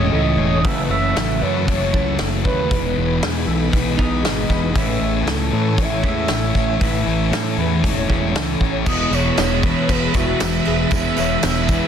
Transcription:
Already playing: distorted electric guitar A2 E3 A3, clean electric guitar A2 E3 G#3 C#4 E4 C#5, string machine A4 C#5 G#5, soft synth lead D#5
0.12 fingered electric bass C#2, distorted electric guitar A2 E3 A3, clean electric guitar A2 E3 C#4 E4 A4
0.36 fingered electric bass E1, distorted electric guitar E3 A3, clean electric guitar C#5
0.62 fingered electric bass F#1, distorted electric guitar F#2 C#3 F#3, clean electric guitar F#2 C#3 E3 A3 B4, string machine F#5 A5, kick, open hi-hat
0.66 clean electric guitar E4, soft synth lead E5
0.88 fingered electric bass F#1, distorted electric guitar C#3 F#3, soft synth lead E5
1.16 fingered electric bass A1, distorted electric guitar F#2 C#3 F#3, clean electric guitar A4, snare, open hi-hat
1.41 fingered electric bass F#2, distorted electric guitar C#3 F#3, clean electric guitar B4, soft synth lead C#5
1.67 fingered electric bass F#1, distorted electric guitar F#2 C#3 F#3, clean electric guitar C#5, soft synth lead C#5, kick, open hi-hat
1.93 fingered electric bass C#2, clean electric guitar F#2 C#3 E3 A3 E4, distorted electric guitar C#3 F#3, kick
2.18 fingered electric bass F#1, clean electric guitar F#2 C#3 E3 A3 E4 A4, distorted electric guitar F#2 C#3 F#3, snare, open hi-hat
2.44 fingered electric bass D#2, distorted electric guitar C#3 F#3, soft synth lead B4, clean electric guitar C#5, kick
2.69 fingered electric bass E1, distorted electric guitar E2 B2 E3, clean electric guitar E3 G#3 B3 D#4 B4, string machine D#4 G#5 B5, kick, open hi-hat
2.96 fingered electric bass E1, distorted electric guitar B2 E3
3.21 distorted electric guitar E2 B2 E3, fingered electric bass E2, clean electric guitar G#4, snare, open hi-hat
3.46 fingered electric bass B1, distorted electric guitar B2 E3, clean electric guitar A4
3.72 fingered electric bass B1, distorted electric guitar E2 B2 E3, clean electric guitar B4, kick, open hi-hat
3.97 fingered electric bass B1, distorted electric guitar B2 E3, clean electric guitar E3 G#3 B3 D#4, soft synth lead D#5, kick
4.23 fingered electric bass G#1, distorted electric guitar E2 B2 E3, clean electric guitar E3 G#3 B3 D#4 G#4, snare, open hi-hat
4.49 fingered electric bass E1, distorted electric guitar B2 E3, clean electric guitar B4, kick, snare
4.73 fingered electric bass A1, distorted electric guitar A2 E3 A3, clean electric guitar A2 E3 B4, string machine C#5 G#5 A5, soft synth lead E5, kick, open hi-hat
4.78 clean electric guitar C#4 E4
5.00 fingered electric bass A1, distorted electric guitar E3 A3
5.25 fingered electric bass C#2, distorted electric guitar A2 E3 A3, clean electric guitar A4, snare, open hi-hat
5.30 soft synth lead A4
5.51 fingered electric bass A2, distorted electric guitar E3 A3, clean electric guitar B4
5.77 fingered electric bass A1, distorted electric guitar A2 E3 A3, clean electric guitar C#5, kick, open hi-hat
5.81 soft synth lead E5
6.03 fingered electric bass E2, clean electric guitar A2 E3 G#3 C#4 E4, distorted electric guitar E3 A3, kick
6.28 fingered electric bass A1, distorted electric guitar A2 E3 A3, clean electric guitar A2 E3 C#4 E4 A4, snare, open hi-hat
6.54 fingered electric bass A1, distorted electric guitar E3 A3, clean electric guitar C#5, kick, snare
6.80 fingered electric bass A1, clean electric guitar A2 E3 C#4 E4 B4, distorted electric guitar A2 E3 A3, kick, open hi-hat
7.06 fingered electric bass A1, distorted electric guitar E3 A3
7.31 fingered electric bass A2, distorted electric guitar A2 E3 A3, clean electric guitar A4, snare, open hi-hat
7.57 fingered electric bass E2, distorted electric guitar E3 A3, clean electric guitar B4
7.83 fingered electric bass E1, distorted electric guitar A2 E3 A3, clean electric guitar C#5, kick, open hi-hat
8.09 fingered electric bass E1, clean electric guitar A2 E3 G#3 C#4 E4, distorted electric guitar E3 A3, kick
8.34 fingered electric bass C#2, clean electric guitar A2 E3 C#4 E4 A4, distorted electric guitar A2 E3 A3, snare, open hi-hat
8.60 fingered electric bass A1, distorted electric guitar E3 A3, clean electric guitar C#5, kick
8.84 fingered electric bass E1, distorted electric guitar E2 B2, clean electric guitar E3 G#3 B3 G#4, soft synth lead D#5, string machine E5 G#5 E6, kick, crash, tambourine
8.89 distorted electric guitar E3, clean electric guitar E4, string machine B4
9.11 fingered electric bass E1, distorted electric guitar B2 E3, clean electric guitar G#3 B3 E4 C#5, soft synth lead C#5, tambourine, crash
9.37 fingered electric bass E1, distorted electric guitar E2 B2 E3, clean electric guitar E3 G#3 B3 E4, snare, tambourine, crash
9.63 distorted electric guitar B2 E3, clean electric guitar G#3 B3 E4 B4, kick, crash
9.89 fingered electric bass E1, clean electric guitar G#4, soft synth lead B4, kick, tambourine, crash
10.14 fingered electric bass E1, distorted electric guitar B2 E3, clean electric guitar G#3 B3 E4 F#4, soft synth lead E5, kick, tambourine, crash
10.40 fingered electric bass E1, distorted electric guitar E2 B2 E3, clean electric guitar E3 G#3 B3 E4, snare, tambourine, crash
10.65 fingered electric bass E1, clean electric guitar G#4, crash
10.90 fingered electric bass E1, distorted electric guitar E2 B2 E3, clean electric guitar E3 G#3 B3 E4 G#4, soft synth lead E5, kick, tambourine, crash
11.16 fingered electric bass E1, distorted electric guitar B2 E3, clean electric guitar G#3 B3 E4 C#5, tambourine, crash
11.42 fingered electric bass E1, distorted electric guitar E2 B2 E3, clean electric guitar E3 G#3 B3 E4, snare, tambourine, crash
11.68 distorted electric guitar B2 E3, clean electric guitar G#3 B3 E4 B4, kick, tambourine, crash

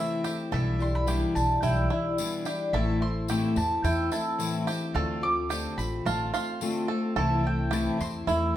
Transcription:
Already playing: twelve-string acoustic guitar C3 E3 A3 C4 E4, five-string banjo E4
0.00 mandolin E5
0.24 twelve-string acoustic guitar A3 C4 E4, five-string banjo G4, tambourine
0.51 upright bass B1, twelve-string acoustic guitar B2 E3 G3 D4 E4, five-string banjo A4, mandolin E5, tambourine
0.79 twelve-string acoustic guitar G3 D4 E4, mandolin C6, tambourine
0.95 mandolin B5
1.07 twelve-string acoustic guitar B2 E3 G3 D4 E4, five-string banjo G4, tambourine
1.34 upright bass B1, twelve-string acoustic guitar G3 D4 E4, mandolin A5, tambourine
1.62 upright bass B1, twelve-string acoustic guitar E3 G3 D4 E4, five-string banjo E4, mandolin G5, tambourine
1.90 twelve-string acoustic guitar G3 D4 E4, five-string banjo E4
2.18 twelve-string acoustic guitar B2 E3 G3 D4 E4, tambourine
2.45 twelve-string acoustic guitar G3 D4 E4, five-string banjo G4, tambourine
2.73 upright bass A1, twelve-string acoustic guitar A2 E3 A3 C4 E4, five-string banjo A4, mandolin E5
3.01 twelve-string acoustic guitar A3 C4 E4, mandolin C6
3.28 twelve-string acoustic guitar A2 E3 A3 C4 E4, five-string banjo G4, tambourine
3.56 upright bass E2, twelve-string acoustic guitar A3 C4 E4, mandolin A5, tambourine
3.84 upright bass E2, twelve-string acoustic guitar E3 A3 C4 E4, five-string banjo E4, mandolin G5, tambourine
4.11 twelve-string acoustic guitar A3 C4 E4, five-string banjo E4, mandolin A5, tambourine
4.38 twelve-string acoustic guitar A2 E3 A3 C4 E4, tambourine
4.66 twelve-string acoustic guitar A3 C4 E4, five-string banjo G4, tambourine
4.94 upright bass D2, twelve-string acoustic guitar D3 A3 C4 F4, five-string banjo A4, mandolin F5
5.21 twelve-string acoustic guitar A3 C4 F4, mandolin D6
5.49 twelve-string acoustic guitar D3 A3 C4 F4, five-string banjo G4, tambourine
5.77 upright bass A1, twelve-string acoustic guitar A3 C4 F4, mandolin B5, tambourine
6.05 upright bass A1, twelve-string acoustic guitar D3 A3 C4 F4, five-string banjo F4, mandolin A5, tambourine
6.33 twelve-string acoustic guitar A3 C4 F4, five-string banjo F4, mandolin C6, tambourine
6.61 twelve-string acoustic guitar D3 A3 C4 F4, tambourine
6.88 twelve-string acoustic guitar A3 C4 F4, five-string banjo A4
7.16 upright bass C2, twelve-string acoustic guitar C3 E3 A3 C4 E4, five-string banjo A4, mandolin A5
7.44 twelve-string acoustic guitar A3 C4 E4, mandolin G5
7.71 twelve-string acoustic guitar C3 E3 A3 C4 E4, five-string banjo G4, mandolin A5, tambourine
7.98 upright bass E2, twelve-string acoustic guitar A3 C4 E4, mandolin C6, tambourine
8.27 upright bass E2, twelve-string acoustic guitar E3 A3 C4 E4, five-string banjo E4, tambourine
8.53 twelve-string acoustic guitar E4

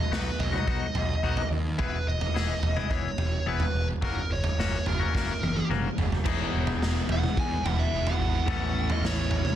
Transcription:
Already playing: lead electric guitar D#5
0.11 picked electric bass B1, clean electric guitar F#3 B3 D#4 F#4, lead electric guitar B4, snare
0.39 picked electric bass B1, lead electric guitar D#5, muted clean electric guitar stroke, floor tom
0.52 clean electric guitar F#3 B3 D#4 F#4, mid tom
0.67 picked electric bass B1, clean electric guitar F#3 B3 D#4 F#4, kick
0.95 picked electric bass B1, floor tom
1.23 picked electric bass B1, clean electric guitar F#3 B3 D#4 F#4
1.37 floor tom
1.50 picked electric bass D#2
1.78 picked electric bass E1, clean electric guitar E3 B3 E4 G#4, lead electric guitar B4, kick, floor tom
2.06 picked electric bass E1, lead electric guitar D#5, muted clean electric guitar stroke
2.21 floor tom
2.34 picked electric bass E1, clean electric guitar E3 B3 E4 G#4, snare
2.62 picked electric bass E1, muted clean electric guitar stroke, floor tom
2.76 clean electric guitar E3 B3 E4 G#4, mid tom
2.90 picked electric bass E1, clean electric guitar E3 B3 E4 G#4, lead electric guitar C#5, kick
3.18 picked electric bass E1, floor tom
3.46 picked electric bass E1, clean electric guitar E3 B3 E4 G#4, lead electric guitar B4
3.60 floor tom
3.75 picked electric bass E1
4.01 picked electric bass F#1, clean electric guitar F#3 A#3 C#4 F#4, lead electric guitar A#4, kick, floor tom
4.30 picked electric bass F#1, lead electric guitar C#5, muted clean electric guitar stroke
4.44 lead electric guitar C#5, floor tom
4.58 picked electric bass F#1, clean electric guitar F#3 A#3 C#4 F#4, snare
4.86 picked electric bass F#1, lead electric guitar A#4, muted clean electric guitar stroke, floor tom
5.00 clean electric guitar F#3 A#3 C#4 F#4
5.14 picked electric bass F#1, clean electric guitar F#3 A#3 C#4 F#4, kick, snare
5.42 picked electric bass F#1, high tom
5.57 high tom
5.69 picked electric bass F#1, clean electric guitar F#3 A#3 C#4 F#4, mid tom
5.98 picked electric bass F#1, floor tom
6.12 floor tom
6.24 picked electric bass E1, clean electric guitar E2 B2 E3 B3 D#4 G#4, overdriven electric guitar E3 G#3 B3, kick, floor tom, crash
6.54 picked electric bass E1
6.67 floor tom
6.82 picked electric bass E1, snare
7.09 picked electric bass E1, lead electric guitar F#5, floor tom
7.23 mid tom
7.37 picked electric bass E2, lead electric guitar G#5, kick
7.64 picked electric bass E1, overdriven electric guitar E3 G#3 B3 E4, lead electric guitar F#5, floor tom
7.79 lead electric guitar E5
7.92 picked electric bass E1, overdriven electric guitar E3 G#3 B3
8.07 lead electric guitar F#5, floor tom
8.19 picked electric bass G#1
8.46 picked electric bass A1, clean electric guitar A2 E3 B3 C#4 A4, overdriven electric guitar A2 E3 A3 C#4, kick, floor tom
8.50 overdriven electric guitar E4
8.90 lead electric guitar D#5, floor tom
9.02 picked electric bass A1, lead electric guitar C#5, snare
9.31 floor tom
9.45 mid tom

